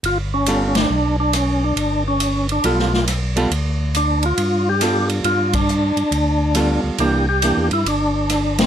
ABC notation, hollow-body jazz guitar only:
X:1
M:4/4
L:1/8
Q:"Swing" 1/4=138
K:Gmix
V:1 name="Hollow-body jazz guitar"
z2 [G,B,FA] z4 z | z4 [G,B,FA] z2 [G,B,FA] | z6 [G,B,FA]2- | [G,B,FA] z4 z [G,B,FA]2 |
[E,_B,D] z [E,B,D] z4 z |]